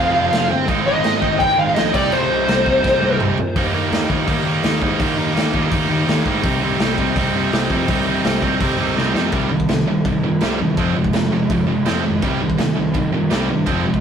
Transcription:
Already playing: F1 F2 C3 F3 G#3 C4 F4 F5
0.13 F1 F3 G#3 C4 F4
0.32 F1, snare, crash
0.50 G1
0.68 G#1 G#2 D#3 G#3 C4 D#4, kick, crash
0.86 G#1 D#5
1.04 G#1, snare, crash
1.21 G#2 D#3 G#3 C4 D#4, kick
1.39 G#1 G#2 D#3 G5, kick, crash
1.44 G#3
1.58 G#1 F5
1.74 A#1 G#2 D#3 G#3 C4 D#5, snare, crash
1.78 D#4
1.93 C2 C3 G3 C4 D#4 D5, kick, crash
2.12 C2 C5, crash
2.31 C2
2.47 C2 C3 G3 C4 D#4, snare, crash
2.65 C3 G3 C4, kick
2.84 C2, kick, snare
3.01 C2 C3 G3 C4 D#4, high tom
3.20 C2, mid tom
3.38 A#2, floor tom
3.56 D#2 D#3 G3 A#3 D#4, kick, open hi-hat
3.74 D#3 G3 A#3 D#4
3.91 D#2 D#3 G3 A#3 D#4, snare, open hi-hat
4.10 D#2 D#3 G3 A#3 D#4, kick
4.27 D#2 D#3 G3 A#3 D#4, kick, open hi-hat
4.44 D#2 D#3 G3 A#3 D#4
4.63 D#2 D#3 G3 A#3 D#4, snare, open hi-hat
4.81 G#2 D#3 G3 A#3 D#4, kick
4.98 D#2 D#3 G3 A#3 D#4, kick, open hi-hat
5.17 D#3 G3 A#3 D#4
5.34 D#2 D#3 G3 A#3 D#4, snare, open hi-hat
5.53 D#2 D#3 G3 A#3 D#4, kick
5.71 D#2 D#3 G3 A#3 D#4, kick, open hi-hat
5.89 D#2 D#3 G3 A#3 D#4
6.07 D#2 D#3 G3 A#3 D#4, snare, open hi-hat
6.26 G#2 D#3 G3 A#3 D#4, kick
6.43 C2 C3 G3 C4 D#4, kick, open hi-hat
6.63 C3 G3 C4 D#4
6.79 C2 C3 G3 C4 D#4, snare, open hi-hat
6.98 C2 C3 G3 C4 D#4, kick
7.16 C2 C3 G3 C4 D#4, kick, open hi-hat
7.34 C2 C3 G3 C4 D#4
7.53 C2 C3 G3 C4 D#4, snare, open hi-hat
7.70 F2 C3 G3 C4 D#4, kick
7.88 C2 C3 G3 C4 D#4, kick, open hi-hat
8.06 C3 G3 C4 D#4
8.24 C2 C3 G3 C4 D#4, snare, open hi-hat
8.42 C2 C3 G3 C4 D#4, kick
8.60 C2 C3 G3 C4 D#4, kick, open hi-hat
8.78 C2 C3 G3 C4 D#4
8.96 C2 C3 G3 C4 D#4, snare
9.13 F2 C3 G3 C4 D#4, snare
9.32 C2 C3 D#3 G3 C4, kick, crash
9.50 C3 D#3 G3
9.60 kick
9.68 C2 C3 D#3 G3, snare, crash
9.87 C2 C3 D#3 G3
10.05 D#2 C3 D#3 G3, kick, crash
10.23 A#2 C3 D#3 G3
10.41 C2 C3 D#3 G3 C4, snare, crash
10.60 E2 C3 D#3 G3
10.77 F1 F2 C3 F3 G#3 C4, kick, crash
10.95 F1 F2 C3 F3 G#3
11.04 kick
11.13 F1 F2 C3 F3 G#3, snare, crash
11.31 F1 F2 C3 F3 G#3
11.50 F1 F2 C3 F3 G#3, kick, crash
11.67 F1 F2 C3 F3 G#3
11.86 F1 F2 C3 F3 G#3 C4, snare, crash
12.05 G#1 F2 C3 F3 G#3
12.22 C2 C3 D#3 G3 C4, kick, crash
12.41 C3 D#3 G3
12.50 kick
12.58 C2 C3 D#3 G3, snare, crash
12.75 C2 C3 D#3 G3
12.94 D#2 C3 D#3 G3, kick, crash
13.12 A#2 C3 D#3 G3
13.30 C2 C3 D#3 G3, snare, crash
13.34 C4
13.49 G2 C3 D#3 G3
13.66 F1 F2 C3 F3 G#3 C4, kick, crash
13.85 F1 F2 C3 F3 G#3
13.94 kick

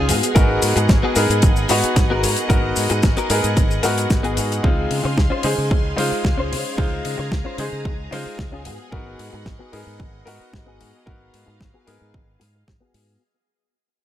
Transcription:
Already playing: C#2 G#4
0.08 G#2 B3 F#4 G#4 D#5 F#5, open hi-hat, shaker
0.23 closed hi-hat, shaker
0.35 G#1 B3 D#4 F#4 A#4, kick, closed hi-hat, shaker
0.62 G#2, open hi-hat, shaker
0.76 G#2, muted clean electric guitar stroke, closed hi-hat, shaker
0.89 G#1, muted clean electric guitar stroke, kick, snare, closed hi-hat, shaker
1.03 B3 F#4 G#4
1.16 G#2 B3 D#4 G#4 A#4, open hi-hat, shaker
1.30 G#2, closed hi-hat, shaker
1.42 G#1, muted clean electric guitar stroke, kick, closed hi-hat, shaker
1.56 shaker
1.69 G#2 B3 D#4 F#4, muted clean electric guitar stroke, open hi-hat, shaker
1.83 muted clean electric guitar stroke, muted fingered electric bass stroke, closed hi-hat, shaker
1.96 G#1, kick, snare, closed hi-hat, shaker
2.10 B3 F#4 A#4
2.23 G#2, open hi-hat, shaker
2.36 closed hi-hat, shaker
2.49 G#1 B3 D#4 F#4 A#4, kick, closed hi-hat, shaker
2.76 G#2, open hi-hat, shaker
2.90 G#2, muted clean electric guitar stroke, closed hi-hat, shaker
3.03 G#1, muted clean electric guitar stroke, kick, snare, closed hi-hat, shaker
3.17 B3 F#4 A#4, closed hi-hat, shaker
3.30 G#2 B3 D#4 G#4 A#4, open hi-hat, shaker
3.44 G#2, closed hi-hat, shaker
3.56 G#1, muted clean electric guitar stroke, kick, closed hi-hat, shaker
3.71 shaker
3.83 G#2 B3 D#4 F#4 A#4, muted clean electric guitar stroke, snare, open hi-hat, shaker
3.97 muted clean electric guitar stroke, closed hi-hat, shaker
4.10 G#1, kick, snare, closed hi-hat, shaker
4.23 B3 F#4 G#4, closed hi-hat
4.37 G#2, open hi-hat, shaker
4.52 closed hi-hat, shaker
4.63 C#2 G#3 C4 D#4 F4 G#4 F5 C6, kick
4.91 C#3, open hi-hat
5.04 C#3, muted clean electric guitar stroke
5.17 C#2, muted clean electric guitar stroke, kick, snare
5.30 C#4 F4 C5
5.43 C#3 G#3 D#4 G#4 C5, open hi-hat
5.58 C#3
5.70 C#2, muted clean electric guitar stroke, kick
5.97 C#3 G#3 D#4 F4 C5, muted clean electric guitar stroke, open hi-hat
6.11 muted clean electric guitar stroke, muted fingered electric bass stroke
6.25 C#2, kick, snare
6.38 C#4 F4 C5
6.52 C#3, open hi-hat
6.77 C#2 G#3 D#4 F4 C5 A#5, kick
7.05 C#3, open hi-hat
7.18 C#3, muted clean electric guitar stroke
7.31 C#2, muted clean electric guitar stroke, kick, snare
7.45 C#4 F4 C5
7.58 C#3 G#3 D#4 G#4 C5, open hi-hat
7.73 C#3
7.85 C#2, muted clean electric guitar stroke, kick
8.11 C#3 G#3 D#4 F4 C5, muted clean electric guitar stroke, snare, open hi-hat
8.25 muted clean electric guitar stroke, muted fingered electric bass stroke
8.39 C#2, kick, snare
8.52 C#4 F4 G#4
8.65 G#2 B3 F#4 G#4 D#5 F#5, open hi-hat
8.92 G#1 B3 D#4 F#4 A#4, kick
9.19 G#2, open hi-hat
9.33 G#2, muted clean electric guitar stroke
9.46 G#1, muted clean electric guitar stroke, kick, snare
9.59 B3 F#4 G#4
9.72 G#2 B3 D#4 G#4 A#4, open hi-hat
9.87 G#2
9.99 G#1, muted clean electric guitar stroke, kick
10.25 G#2 B3 D#4 F#4 A#4, muted clean electric guitar stroke, open hi-hat
10.40 muted clean electric guitar stroke, muted fingered electric bass stroke
10.53 G#1, kick, snare
10.66 B3 F#4 G#4
10.80 G#2 F5, open hi-hat
11.06 G#1 B3 D#4 F#4 A#4, kick
11.34 G#2, open hi-hat
11.47 G#2, muted clean electric guitar stroke
11.60 muted clean electric guitar stroke, kick, snare
11.74 B3 F#4 G#4
11.87 G#2 B3 D#4 G#4 A#4, open hi-hat
12.02 G#2
12.14 G#1, muted clean electric guitar stroke, kick
12.40 G#2, muted clean electric guitar stroke, snare, open hi-hat
12.54 muted clean electric guitar stroke
12.68 kick, snare
12.80 B3 F#4 G#4
12.94 G#2, open hi-hat

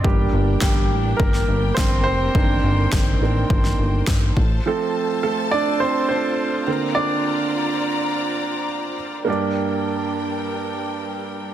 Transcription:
0.04 G1 G3 A#3 D4 G4 A#4 G5, kick
0.33 G1
0.60 G1 G3 G4, kick, snare, clap
0.90 A1
1.17 G1 A#3 A#4, kick
1.34 snare
1.48 G1
1.74 G1 C4 C5, kick, snare
1.79 clap
2.04 F1 C4 C5
2.35 G1 D#3 A#3 D4 C5, kick
2.63 G1
2.92 G1, kick, snare, clap
3.21 A1 D#3 A#3 D4
3.50 G1, kick
3.65 snare
3.79 G1
4.07 G1, kick, snare, clap
4.37 A1 F4 A4 A5, kick
4.66 F3 A3 C4 A4
5.23 A3 A4
5.51 D4 D5
5.80 C4 C5
6.09 C4 C5
6.67 D3 A#3 C4 D5 A#5
6.95 D4 D5
9.25 G2 G3 A#3 D4 G4 A#4 G5
9.30 D5

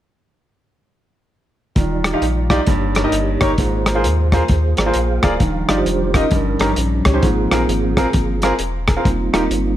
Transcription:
1.75 D#1 D#3 G3 D#4 F4 D5, kick, closed hi-hat
2.04 G4 D5, cross-stick, closed hi-hat
2.13 D#4 F4 G4 F5
2.21 A#1, closed hi-hat
2.50 D#4 F4 G4 D5, kick, cross-stick, closed hi-hat
2.67 G1 G2 A#3 D#4 G4 C#5, kick, closed hi-hat
2.95 A#4 C#5, cross-stick, closed hi-hat
3.04 D#4 G4 A#4 D#5
3.12 G1, closed hi-hat
3.41 G1 D#4 G4 A#4 C#5, kick, cross-stick, closed hi-hat
3.58 G#1 G#2 A#3 F4 G#4 C5, kick, closed hi-hat
3.86 A#4 C5, cross-stick, closed hi-hat
3.95 F4 G#4 A#4 C5
4.04 D#2, closed hi-hat
4.32 F4 G#4 A#4 C5, kick, cross-stick, closed hi-hat
4.48 D#2, kick, closed hi-hat
4.77 G#1 A#4 D5 G5 G#5, cross-stick, closed hi-hat
4.86 F4 G#4 A#4 C5
4.94 A#1 F5 G5, closed hi-hat
5.23 D1 F4 G#4 A#4 C5 D5 F5, kick, cross-stick, closed hi-hat
5.39 D#1 D#3 F3 G3 D4, kick, closed hi-hat
5.69 G1 D#4 F4 G4 D5 D#5, cross-stick, closed hi-hat
5.77 F4 G4 C5
5.86 F1, closed hi-hat
6.14 C#4 D#4 F4 G4 A#4 D#5, kick, cross-stick, closed hi-hat
6.30 G1 G2 F3 G3 C#4, kick, closed hi-hat
6.60 G#1 C#4 D#4 G4 A#4, cross-stick, closed hi-hat
6.76 A#1, closed hi-hat
7.05 C#2 G4 C#5, kick, cross-stick, closed hi-hat
7.14 C#4 D#4 G4 C5
7.21 G#1 G#2 F3 A#3 C4 F4 G#4, kick, closed hi-hat
7.51 A#1 C4 F4 G#4 A#4, cross-stick, closed hi-hat
7.68 G#1, closed hi-hat
7.97 C4 F4 G#4 A#4, kick, cross-stick, closed hi-hat
8.13 G1 F3 A#3 C4, kick, closed hi-hat
8.42 C4 F4 G#4 A#4, cross-stick, closed hi-hat
8.59 E1, closed hi-hat
8.88 G#4 A#4, kick, cross-stick, closed hi-hat
8.97 C4 F4 G#4 A#4
9.05 F1 G3 A#3 C4 D#4 F4, kick, closed hi-hat
9.33 D#1 D#4 F4 G4 A#4, cross-stick, closed hi-hat
9.50 G1, closed hi-hat

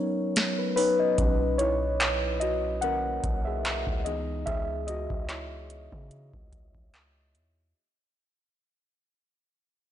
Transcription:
Already playing: F#3 B3 C#4 D#4 C#5
0.36 snare, closed hi-hat
0.58 B4
0.76 D#4 B4 C#5, open hi-hat
0.99 D#5
1.18 B1 A#2 F#3 C#4, kick, closed hi-hat
1.58 E4 C#5, closed hi-hat
2.01 clap, closed hi-hat
2.40 F#4 D#5, closed hi-hat
2.81 D#3 A#3 C#4 A#4 F#5, closed hi-hat
3.24 B1, kick, closed hi-hat
3.45 G#4 E5
3.65 clap, closed hi-hat
3.87 C#2, kick
4.04 E3 B3 D#4 G#4 D#5, closed hi-hat
4.46 C#2 G#4 E5, kick, closed hi-hat
4.87 F#4 D#5, closed hi-hat
5.10 C#2, kick
5.28 E4 C#5, clap, closed hi-hat
5.70 closed hi-hat
5.92 C#3, kick
6.11 closed hi-hat
6.34 C#2, kick
6.52 kick, closed hi-hat
6.75 kick
6.94 clap, closed hi-hat
7.35 E2, closed hi-hat

